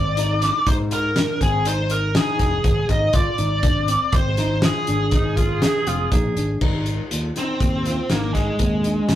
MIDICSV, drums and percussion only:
0, 0, Header, 1, 2, 480
1, 0, Start_track
1, 0, Tempo, 495458
1, 3047, Time_signature, 7, 2, 24, 8
1, 8867, End_track
2, 0, Start_track
2, 0, Title_t, "Drums"
2, 165, Note_on_c, 9, 42, 87
2, 262, Note_off_c, 9, 42, 0
2, 404, Note_on_c, 9, 38, 37
2, 404, Note_on_c, 9, 42, 71
2, 501, Note_off_c, 9, 38, 0
2, 501, Note_off_c, 9, 42, 0
2, 645, Note_on_c, 9, 42, 82
2, 646, Note_on_c, 9, 36, 97
2, 742, Note_off_c, 9, 42, 0
2, 743, Note_off_c, 9, 36, 0
2, 882, Note_on_c, 9, 42, 63
2, 979, Note_off_c, 9, 42, 0
2, 1123, Note_on_c, 9, 38, 101
2, 1123, Note_on_c, 9, 42, 82
2, 1220, Note_off_c, 9, 38, 0
2, 1220, Note_off_c, 9, 42, 0
2, 1365, Note_on_c, 9, 36, 70
2, 1367, Note_on_c, 9, 42, 68
2, 1462, Note_off_c, 9, 36, 0
2, 1464, Note_off_c, 9, 42, 0
2, 1602, Note_on_c, 9, 42, 85
2, 1699, Note_off_c, 9, 42, 0
2, 1837, Note_on_c, 9, 42, 65
2, 1934, Note_off_c, 9, 42, 0
2, 2082, Note_on_c, 9, 38, 113
2, 2082, Note_on_c, 9, 42, 84
2, 2179, Note_off_c, 9, 38, 0
2, 2179, Note_off_c, 9, 42, 0
2, 2318, Note_on_c, 9, 38, 31
2, 2318, Note_on_c, 9, 42, 57
2, 2320, Note_on_c, 9, 36, 71
2, 2415, Note_off_c, 9, 38, 0
2, 2415, Note_off_c, 9, 42, 0
2, 2417, Note_off_c, 9, 36, 0
2, 2558, Note_on_c, 9, 42, 68
2, 2560, Note_on_c, 9, 36, 97
2, 2655, Note_off_c, 9, 42, 0
2, 2657, Note_off_c, 9, 36, 0
2, 2799, Note_on_c, 9, 42, 56
2, 2800, Note_on_c, 9, 36, 69
2, 2896, Note_off_c, 9, 42, 0
2, 2897, Note_off_c, 9, 36, 0
2, 3033, Note_on_c, 9, 42, 81
2, 3038, Note_on_c, 9, 36, 103
2, 3130, Note_off_c, 9, 42, 0
2, 3135, Note_off_c, 9, 36, 0
2, 3275, Note_on_c, 9, 42, 53
2, 3372, Note_off_c, 9, 42, 0
2, 3515, Note_on_c, 9, 42, 83
2, 3518, Note_on_c, 9, 36, 112
2, 3612, Note_off_c, 9, 42, 0
2, 3615, Note_off_c, 9, 36, 0
2, 3758, Note_on_c, 9, 42, 65
2, 3854, Note_off_c, 9, 42, 0
2, 3995, Note_on_c, 9, 42, 85
2, 3999, Note_on_c, 9, 36, 109
2, 4092, Note_off_c, 9, 42, 0
2, 4096, Note_off_c, 9, 36, 0
2, 4236, Note_on_c, 9, 38, 35
2, 4236, Note_on_c, 9, 42, 63
2, 4333, Note_off_c, 9, 38, 0
2, 4333, Note_off_c, 9, 42, 0
2, 4475, Note_on_c, 9, 38, 112
2, 4475, Note_on_c, 9, 42, 88
2, 4572, Note_off_c, 9, 38, 0
2, 4572, Note_off_c, 9, 42, 0
2, 4718, Note_on_c, 9, 42, 62
2, 4814, Note_off_c, 9, 42, 0
2, 4954, Note_on_c, 9, 38, 32
2, 4954, Note_on_c, 9, 42, 78
2, 4961, Note_on_c, 9, 36, 98
2, 5051, Note_off_c, 9, 38, 0
2, 5051, Note_off_c, 9, 42, 0
2, 5058, Note_off_c, 9, 36, 0
2, 5204, Note_on_c, 9, 36, 80
2, 5204, Note_on_c, 9, 42, 66
2, 5301, Note_off_c, 9, 36, 0
2, 5301, Note_off_c, 9, 42, 0
2, 5443, Note_on_c, 9, 38, 123
2, 5443, Note_on_c, 9, 42, 96
2, 5540, Note_off_c, 9, 38, 0
2, 5540, Note_off_c, 9, 42, 0
2, 5683, Note_on_c, 9, 42, 62
2, 5780, Note_off_c, 9, 42, 0
2, 5926, Note_on_c, 9, 36, 104
2, 5926, Note_on_c, 9, 42, 77
2, 6023, Note_off_c, 9, 36, 0
2, 6023, Note_off_c, 9, 42, 0
2, 6168, Note_on_c, 9, 42, 55
2, 6265, Note_off_c, 9, 42, 0
2, 6403, Note_on_c, 9, 49, 82
2, 6407, Note_on_c, 9, 36, 102
2, 6500, Note_off_c, 9, 49, 0
2, 6504, Note_off_c, 9, 36, 0
2, 6644, Note_on_c, 9, 42, 51
2, 6741, Note_off_c, 9, 42, 0
2, 6889, Note_on_c, 9, 42, 83
2, 6986, Note_off_c, 9, 42, 0
2, 7129, Note_on_c, 9, 38, 32
2, 7129, Note_on_c, 9, 42, 61
2, 7225, Note_off_c, 9, 38, 0
2, 7225, Note_off_c, 9, 42, 0
2, 7367, Note_on_c, 9, 42, 77
2, 7368, Note_on_c, 9, 36, 95
2, 7464, Note_off_c, 9, 36, 0
2, 7464, Note_off_c, 9, 42, 0
2, 7609, Note_on_c, 9, 38, 32
2, 7609, Note_on_c, 9, 42, 56
2, 7706, Note_off_c, 9, 38, 0
2, 7706, Note_off_c, 9, 42, 0
2, 7844, Note_on_c, 9, 38, 91
2, 7844, Note_on_c, 9, 42, 79
2, 7940, Note_off_c, 9, 38, 0
2, 7940, Note_off_c, 9, 42, 0
2, 8087, Note_on_c, 9, 38, 33
2, 8087, Note_on_c, 9, 42, 57
2, 8089, Note_on_c, 9, 36, 69
2, 8184, Note_off_c, 9, 38, 0
2, 8184, Note_off_c, 9, 42, 0
2, 8186, Note_off_c, 9, 36, 0
2, 8322, Note_on_c, 9, 42, 79
2, 8327, Note_on_c, 9, 36, 93
2, 8419, Note_off_c, 9, 42, 0
2, 8424, Note_off_c, 9, 36, 0
2, 8565, Note_on_c, 9, 42, 65
2, 8662, Note_off_c, 9, 42, 0
2, 8803, Note_on_c, 9, 38, 118
2, 8803, Note_on_c, 9, 42, 93
2, 8867, Note_off_c, 9, 38, 0
2, 8867, Note_off_c, 9, 42, 0
2, 8867, End_track
0, 0, End_of_file